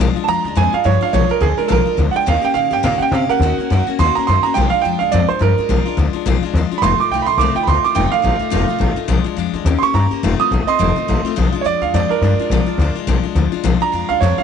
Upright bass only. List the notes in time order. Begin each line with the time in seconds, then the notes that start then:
0.00 A#1
0.15 muted upright bass stroke
0.28 F2
0.44 D2
0.56 F2
0.73 muted upright bass stroke
0.85 G2
1.02 muted upright bass stroke
1.13 A#1
1.30 muted upright bass stroke
1.41 D2
1.58 muted upright bass stroke
1.70 A#1
1.86 muted upright bass stroke
1.98 D2
2.27 D#2
2.55 A#2
2.71 G2
2.84 A#2
2.99 muted upright bass stroke
3.11 C3
3.29 muted upright bass stroke
3.39 D#2
3.58 muted upright bass stroke
3.71 F#2
3.87 muted upright bass stroke
3.99 D#2
4.16 muted upright bass stroke
4.28 F#2
4.44 muted upright bass stroke
4.57 A#1
4.73 muted upright bass stroke
4.85 F2
5.01 D2
5.13 F2
5.30 muted upright bass stroke
5.41 G2
5.58 muted upright bass stroke
5.69 A#1
5.85 muted upright bass stroke
5.97 D2
6.13 muted upright bass stroke
6.26 A#1
6.42 muted upright bass stroke
6.53 D#2
6.82 F1
6.98 muted upright bass stroke
7.10 C2
7.26 A1
7.37 C2
7.55 muted upright bass stroke
7.67 D2
7.83 muted upright bass stroke
7.96 F1
8.12 muted upright bass stroke
8.24 A1
8.41 muted upright bass stroke
8.52 F1
8.69 muted upright bass stroke
8.80 A1
8.97 muted upright bass stroke
9.08 A#1
9.25 muted upright bass stroke
9.37 F2
9.53 F2
9.65 D#2
9.82 muted upright bass stroke
9.94 G2
10.11 muted upright bass stroke
10.23 F1
10.40 muted upright bass stroke
10.51 A1
10.68 muted upright bass stroke
10.79 F1
10.97 muted upright bass stroke
11.09 A1
11.26 muted upright bass stroke
11.37 A#1
11.65 F2
11.81 D2
11.94 F2
12.10 muted upright bass stroke
12.21 G2
12.38 muted upright bass stroke
12.50 A#1
12.67 muted upright bass stroke
12.78 D2
12.95 muted upright bass stroke
13.07 A#1
13.23 muted upright bass stroke
13.35 D2
13.52 muted upright bass stroke
13.64 A#1
13.93 F2
14.09 D2
14.21 F2
14.38 muted upright bass stroke